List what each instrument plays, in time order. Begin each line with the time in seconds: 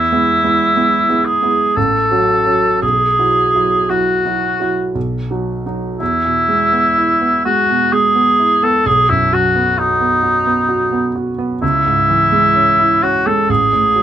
Already playing: grand piano E2, cor anglais E4
0.12 grand piano G#3 B3 E4
0.44 grand piano G#3 B3 E4
0.76 grand piano G#3 B3 E4
1.09 grand piano G#3 B3 E4
1.25 cor anglais G#4
1.42 grand piano G#3 B3 E4
1.76 grand piano A1, cor anglais A4
2.11 grand piano F#3 C#4 F#4
2.46 grand piano F#3 C#4 F#4
2.82 grand piano B1, cor anglais G#4
3.19 grand piano F#3 E4 F#4
3.55 grand piano F#3 E4 F#4
3.90 grand piano F#3 E4 F#4, cor anglais F#4
4.25 grand piano F#3 E4 F#4
4.60 grand piano F#3 E4 F#4
4.95 grand piano B1
5.31 grand piano F#3 D#4 F#4
5.66 grand piano F#3 D#4 F#4
6.00 grand piano E2, cor anglais E4
6.25 grand piano B2
6.49 grand piano G#3
6.73 grand piano B3
6.98 grand piano E4
7.21 grand piano B3
7.45 grand piano G#3, cor anglais F#4
7.69 grand piano B2
7.93 grand piano G#3, cor anglais G#4
8.15 grand piano B3
8.40 grand piano E4
8.63 grand piano B3, cor anglais A4
8.86 grand piano B1, cor anglais G#4
9.10 grand piano F#2, cor anglais E4
9.32 grand piano F#3, cor anglais F#4
9.56 grand piano B3
9.79 cor anglais D#4, grand piano F#4
10.01 grand piano B3
10.23 grand piano F#4
10.47 grand piano B3
10.69 grand piano F#4
10.92 grand piano B3
11.16 grand piano F#4
11.38 grand piano B3
11.62 grand piano C#2, cor anglais E4
11.86 grand piano G#2
12.09 grand piano E3
12.32 grand piano G#3
12.56 grand piano C#4
12.79 grand piano E4
13.03 grand piano C#4, cor anglais F#4
13.26 grand piano G#3, cor anglais A4
13.49 grand piano A1, cor anglais G#4
13.73 grand piano A2
13.96 grand piano F#3